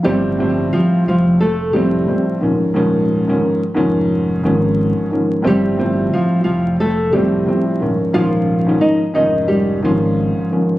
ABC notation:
X:1
M:4/4
L:1/16
Q:"Swing 16ths" 1/4=89
K:Eblyd
V:1 name="Nylon-string guitar"
[G,G]4 [F,F]2 [F,F]2 [A,A]2 [G,G]3 z3 | z16 | [G,G]4 [F,F]2 [F,F]2 [A,A]2 [G,G]3 z3 | [F,F]4 [Ee]2 [Ee]2 [G,G]2 [F,F]6 |]
V:2 name="Grand piano" clef=bass
[A,,F,G,C]2 [A,,F,G,C]6 z2 [A,,F,G,C]2 [A,,F,G,C]2 [_A,,E,F,_D]2 | [_A,,E,F,_D]3 [A,,E,F,D]2 z [A,,E,F,D]4 [A,,E,F,D]4 [A,,E,F,D]2 | [A,,F,G,C]2 [A,,F,G,C]6 z2 [A,,F,G,C]2 [A,,F,G,C]2 [_A,,E,F,_D]2 | [_A,,E,F,_D]3 [A,,E,F,D]2 z [A,,E,F,D]4 [A,,E,F,D]4 [A,,E,F,D]2 |]
V:3 name="Sub bass" clef=bass
G,,,4 z2 F,,,4 F,,,2 z2 E,,, z | E,,,4 z2 F,,,4 _A,,,3 z3 | G,,,4 z2 F,,,4 F,,,2 z2 E,,, z | E,,,4 z2 F,,,4 _A,,,3 z3 |]